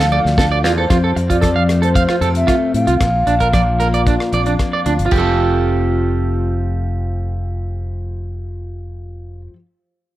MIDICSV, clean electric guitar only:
0, 0, Header, 1, 3, 480
1, 0, Start_track
1, 0, Key_signature, -1, "major"
1, 0, Tempo, 527704
1, 814, Time_signature, 4, 2, 24, 8
1, 9245, End_track
2, 0, Start_track
2, 0, Title_t, "Clean electric guitar"
2, 0, Program_c, 0, 27
2, 109, Note_on_c, 0, 74, 79
2, 167, Note_off_c, 0, 74, 0
2, 344, Note_on_c, 0, 69, 85
2, 404, Note_off_c, 0, 69, 0
2, 468, Note_on_c, 0, 74, 77
2, 524, Note_off_c, 0, 74, 0
2, 587, Note_on_c, 0, 65, 76
2, 645, Note_off_c, 0, 65, 0
2, 708, Note_on_c, 0, 69, 79
2, 764, Note_off_c, 0, 69, 0
2, 819, Note_on_c, 0, 65, 81
2, 879, Note_off_c, 0, 65, 0
2, 945, Note_on_c, 0, 69, 69
2, 1002, Note_off_c, 0, 69, 0
2, 1180, Note_on_c, 0, 65, 64
2, 1238, Note_off_c, 0, 65, 0
2, 1287, Note_on_c, 0, 69, 68
2, 1351, Note_off_c, 0, 69, 0
2, 1417, Note_on_c, 0, 77, 75
2, 1476, Note_off_c, 0, 77, 0
2, 1656, Note_on_c, 0, 69, 66
2, 1715, Note_off_c, 0, 69, 0
2, 1779, Note_on_c, 0, 77, 84
2, 1840, Note_off_c, 0, 77, 0
2, 1897, Note_on_c, 0, 65, 60
2, 1956, Note_off_c, 0, 65, 0
2, 2014, Note_on_c, 0, 69, 67
2, 2076, Note_off_c, 0, 69, 0
2, 2247, Note_on_c, 0, 65, 73
2, 2311, Note_off_c, 0, 65, 0
2, 2612, Note_on_c, 0, 65, 62
2, 2673, Note_off_c, 0, 65, 0
2, 2973, Note_on_c, 0, 62, 64
2, 3036, Note_off_c, 0, 62, 0
2, 3096, Note_on_c, 0, 70, 65
2, 3156, Note_off_c, 0, 70, 0
2, 3217, Note_on_c, 0, 74, 71
2, 3279, Note_off_c, 0, 74, 0
2, 3454, Note_on_c, 0, 70, 65
2, 3517, Note_off_c, 0, 70, 0
2, 3584, Note_on_c, 0, 74, 63
2, 3642, Note_off_c, 0, 74, 0
2, 3707, Note_on_c, 0, 62, 70
2, 3766, Note_off_c, 0, 62, 0
2, 3946, Note_on_c, 0, 74, 67
2, 4006, Note_off_c, 0, 74, 0
2, 4062, Note_on_c, 0, 62, 58
2, 4121, Note_off_c, 0, 62, 0
2, 4305, Note_on_c, 0, 74, 64
2, 4364, Note_off_c, 0, 74, 0
2, 4422, Note_on_c, 0, 62, 60
2, 4483, Note_off_c, 0, 62, 0
2, 4601, Note_on_c, 0, 65, 62
2, 4655, Note_on_c, 0, 67, 59
2, 4711, Note_on_c, 0, 69, 68
2, 8561, Note_off_c, 0, 65, 0
2, 8615, Note_off_c, 0, 67, 0
2, 8671, Note_off_c, 0, 69, 0
2, 9245, End_track
3, 0, Start_track
3, 0, Title_t, "Muted clean electric guitar strokes"
3, 1059, Note_on_c, 9, 29, 77
3, 1150, Note_off_c, 9, 29, 0
3, 9245, End_track
0, 0, End_of_file